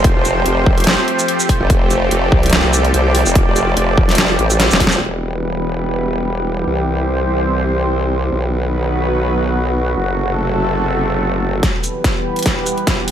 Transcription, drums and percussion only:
0.04 kick, closed hi-hat
0.25 closed hi-hat, shaker
0.46 closed hi-hat
0.66 kick
0.78 closed hi-hat
0.80 closed hi-hat
0.84 snare, closed hi-hat
0.87 closed hi-hat
1.08 closed hi-hat
1.19 closed hi-hat, shaker
1.28 closed hi-hat
1.40 shaker
1.49 kick, open hi-hat
1.70 kick, closed hi-hat
1.91 closed hi-hat, shaker
2.11 closed hi-hat
2.32 kick
2.43 closed hi-hat
2.46 closed hi-hat
2.50 snare, closed hi-hat
2.53 closed hi-hat
2.73 closed hi-hat, shaker
2.85 closed hi-hat
2.94 closed hi-hat
3.15 open hi-hat
3.26 shaker
3.35 kick, closed hi-hat
3.56 closed hi-hat, shaker
3.77 closed hi-hat
3.98 kick
4.09 snare, closed hi-hat
4.11 closed hi-hat
4.15 snare, closed hi-hat
4.18 closed hi-hat
4.39 closed hi-hat
4.50 closed hi-hat, shaker
4.60 snare, closed hi-hat
4.71 snare, shaker
4.80 kick, open hi-hat
4.87 snare
4.92 shaker
11.63 kick, snare, closed hi-hat
11.84 closed hi-hat, shaker
12.04 kick, snare, closed hi-hat
12.36 closed hi-hat
12.39 closed hi-hat
12.43 snare, closed hi-hat
12.46 kick, closed hi-hat
12.66 closed hi-hat, shaker
12.78 closed hi-hat
12.87 kick, snare, closed hi-hat
13.08 open hi-hat

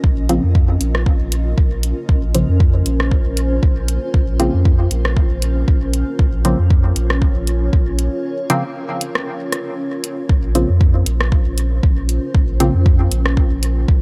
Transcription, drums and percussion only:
0.04 kick
0.29 closed hi-hat
0.55 kick
0.81 closed hi-hat
0.95 cross-stick
1.06 kick
1.32 closed hi-hat
1.58 kick
1.83 closed hi-hat
2.09 kick
2.35 closed hi-hat
2.60 kick
2.86 closed hi-hat
3.00 cross-stick
3.11 kick
3.37 closed hi-hat
3.63 kick
3.88 closed hi-hat
4.14 kick
4.40 closed hi-hat
4.65 kick
4.91 closed hi-hat
5.05 cross-stick
5.17 kick
5.42 closed hi-hat
5.68 kick
5.93 closed hi-hat
6.19 kick
6.45 closed hi-hat
6.70 kick
6.96 closed hi-hat
7.10 cross-stick
7.22 kick
7.47 closed hi-hat
7.73 kick
7.99 closed hi-hat
8.50 closed hi-hat
9.01 closed hi-hat
9.15 cross-stick
9.52 cross-stick, closed hi-hat
10.04 closed hi-hat
10.29 kick
10.55 closed hi-hat
10.81 kick
11.06 closed hi-hat
11.21 cross-stick
11.32 kick
11.58 closed hi-hat
11.83 kick
12.09 closed hi-hat
12.35 kick
12.60 closed hi-hat
12.86 kick
13.12 closed hi-hat
13.26 cross-stick
13.37 kick
13.63 closed hi-hat
13.88 kick

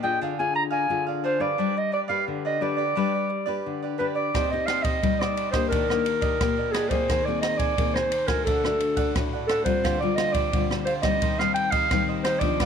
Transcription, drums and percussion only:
4.35 kick, cross-stick, ride
4.68 cross-stick, ride
4.84 kick, ride
5.03 kick, ride
5.21 cross-stick
5.37 ride
5.53 kick, cross-stick, ride
5.72 kick, ride
5.90 cross-stick
6.06 ride
6.22 kick, ride
6.41 kick, cross-stick, ride
6.74 cross-stick, ride
6.91 kick, ride
7.09 kick, cross-stick, ride
7.43 cross-stick, ride
7.59 kick, ride
7.78 kick, ride
7.96 cross-stick
8.12 ride
8.28 kick, cross-stick, ride
8.47 kick, ride
8.64 cross-stick
8.80 ride
8.97 kick, ride
9.16 kick, cross-stick, ride
9.49 cross-stick, ride
9.66 kick, ride
9.85 kick, cross-stick, ride
10.18 cross-stick, ride
10.34 kick, ride
10.53 kick, ride
10.71 cross-stick
10.87 ride
11.03 kick, cross-stick, ride
11.22 kick, ride
11.39 cross-stick
11.56 ride
11.72 kick, ride
11.91 kick, cross-stick, ride
12.25 cross-stick, ride
12.41 kick, ride
12.60 kick, cross-stick, ride

